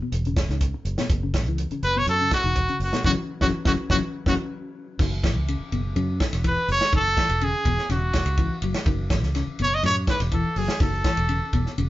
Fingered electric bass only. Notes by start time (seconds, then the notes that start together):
0.12 E1
0.49 C#2
0.85 F#1
1.10 F#1
1.46 C#2
1.71 muted fingered electric bass stroke
1.83 F#1
2.07 F#2
2.44 E1
2.80 F#1
3.04 F#1
3.41 F#1
3.65 F#1
3.90 F#1
4.26 F#1
4.99 F#1
5.36 C#2
5.60 muted fingered electric bass stroke
5.72 F#1
5.96 F#2
6.33 E1
6.68 F#1
6.93 F#1
7.29 E1
7.65 E1
7.89 E1
8.26 C#2
8.62 F#1
8.86 F#1
9.23 C#2
9.59 F#1
9.83 F#2
10.20 E1
10.56 F#1
10.80 F#1
11.17 E1
11.53 E1
11.78 E1